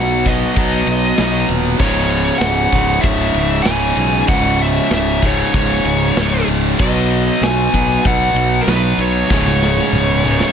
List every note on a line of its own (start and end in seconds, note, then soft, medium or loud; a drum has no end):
0.00 0.44 B1 loud
0.00 0.25 B2 loud
0.00 0.26 F#3 loud
0.00 0.27 B3 loud
0.00 0.28 F#5 loud
0.25 1.18 B3 loud
0.25 1.46 D#5 medium
0.25 kick medium
0.25 ride medium
0.30 1.19 B2 medium
0.30 1.19 F#3 medium
0.56 0.81 B1 loud
0.56 1.78 B2 medium
0.56 1.80 F#3 medium
0.56 1.80 B3 medium
0.56 kick loud
0.56 ride loud
0.87 1.12 B1 medium
0.87 ride medium
1.18 1.43 B1 loud
1.18 1.79 B2 medium
1.18 snare loud
1.18 ride loud
1.22 1.80 F#3 medium
1.22 1.81 B3 loud
1.49 1.74 D#1 medium
1.49 ride medium
1.79 2.29 C#1 loud
1.79 2.75 C#2 medium
1.79 2.73 G#2 loud
1.79 2.38 C#5 loud
1.79 kick loud
1.79 crash loud
1.83 2.72 C#3 loud
2.10 ride medium
2.38 2.66 C#1 medium
2.38 3.04 F#5 loud
2.38 snare loud
2.38 ride loud
2.72 2.98 C#1 loud
2.72 3.64 C#2 medium
2.72 3.65 G#2 medium
2.72 3.65 C#3 loud
2.72 kick medium
2.72 ride medium
3.01 3.29 C#1 loud
3.01 4.25 C#2 loud
3.01 4.27 G#2 medium
3.01 4.27 C#3 loud
3.01 3.67 E5 loud
3.01 kick loud
3.01 ride loud
3.34 3.60 C#1 loud
3.34 ride medium
3.62 3.91 C#1 loud
3.62 4.26 C#2 medium
3.62 4.23 G#5 loud
3.62 snare loud
3.62 ride loud
3.67 4.27 G#2 medium
3.67 4.28 C#3 loud
3.97 4.22 B1 loud
3.97 ride medium
4.27 4.78 C#1 loud
4.27 5.20 C#2 medium
4.27 5.20 G#2 loud
4.27 5.21 C#3 loud
4.27 4.61 F#5 loud
4.27 kick loud
4.27 ride loud
4.59 4.93 E5 loud
4.59 ride medium
4.91 5.41 C#1 loud
4.91 5.25 E5 loud
4.91 snare loud
4.91 ride loud
5.22 6.15 C#2 medium
5.22 6.15 G#2 medium
5.22 6.14 C#3 medium
5.22 kick medium
5.22 ride medium
5.26 6.45 C#5 medium
5.53 5.79 C#1 loud
5.53 6.76 C#2 medium
5.53 6.77 G#2 medium
5.53 6.78 C#3 loud
5.53 kick loud
5.53 ride loud
5.85 6.10 C#1 loud
5.85 ride medium
6.17 6.41 C#1 loud
6.17 6.77 C#2 medium
6.17 6.78 G#2 medium
6.17 6.78 C#3 loud
6.17 snare loud
6.17 ride loud
6.48 6.72 C#1 medium
6.48 ride medium
6.79 7.29 B1 loud
6.79 7.71 B2 loud
6.79 7.72 F#3 loud
6.79 7.72 B3 loud
6.79 7.44 D#5 loud
6.79 kick loud
6.79 crash loud
7.11 ride medium
7.41 7.66 B1 medium
7.41 8.06 G#5 loud
7.41 snare loud
7.41 ride loud
7.73 7.98 B1 loud
7.73 8.66 B2 medium
7.73 8.66 F#3 medium
7.73 8.65 B3 loud
7.73 kick medium
7.73 ride medium
8.05 8.30 B1 loud
8.05 9.28 B2 medium
8.05 9.29 F#3 loud
8.05 9.29 B3 loud
8.05 8.62 F#5 loud
8.05 kick loud
8.05 ride loud
8.34 8.59 B1 loud
8.34 ride medium
8.61 8.67 A#4 medium
8.67 8.92 B1 loud
8.67 9.28 B2 medium
8.67 9.28 F#3 medium
8.67 9.29 B3 loud
8.67 9.00 B4 medium
8.67 snare loud
8.67 ride loud
8.98 9.23 B1 loud
8.98 10.52 C#5 medium
8.98 ride medium
9.30 9.80 C#1 loud
9.30 10.22 C#2 medium
9.30 10.23 G#2 loud
9.30 10.22 C#3 loud
9.30 kick loud
9.30 snare medium
9.46 high tom medium
9.62 snare medium
9.77 high tom medium
9.93 10.42 C#1 loud
9.93 mid tom loud
10.08 mid tom medium
10.23 10.52 C#2 medium
10.23 10.52 G#2 medium
10.23 10.52 C#3 medium
10.23 mid tom medium
10.40 snare medium